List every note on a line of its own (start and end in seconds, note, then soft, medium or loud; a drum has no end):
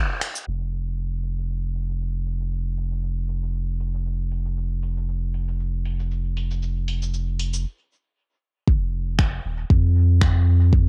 0.21 finger snap soft
0.21 open hi-hat medium
0.21 ride medium
0.35 cabasa medium
0.47 7.65 F1 medium
0.47 cabasa soft
0.73 open hi-hat medium
0.87 cabasa soft
0.98 cabasa soft
1.24 open hi-hat medium
1.38 open hi-hat soft
1.38 cabasa soft
1.50 cabasa soft
1.75 open hi-hat medium
1.89 cabasa soft
2.01 cabasa soft
2.26 open hi-hat medium
2.41 cabasa soft
2.52 cabasa soft
2.78 open hi-hat medium
2.92 cabasa soft
3.03 cabasa soft
3.29 open hi-hat medium
3.43 open hi-hat soft
3.43 cabasa soft
3.55 cabasa soft
3.80 open hi-hat medium
3.94 cabasa soft
4.06 cabasa soft
4.32 open hi-hat medium
4.46 cabasa soft
4.57 cabasa soft
4.83 open hi-hat medium
4.97 cabasa soft
5.08 cabasa soft
5.34 open hi-hat medium
5.48 open hi-hat soft
5.48 cabasa soft
5.60 cabasa soft
5.85 open hi-hat medium
6.00 cabasa soft
6.11 cabasa soft
6.37 open hi-hat medium
6.51 cabasa soft
6.62 cabasa soft
6.88 open hi-hat medium
7.02 cabasa soft
7.14 cabasa soft
7.39 open hi-hat medium
7.53 open hi-hat soft
7.53 cabasa soft
8.68 9.39 F1 medium
8.68 kick loud
9.19 finger snap medium
9.19 kick loud
9.44 9.64 D#1 medium
9.70 10.89 F2 loud
9.70 kick loud
10.21 finger snap medium
10.21 kick loud
10.73 kick loud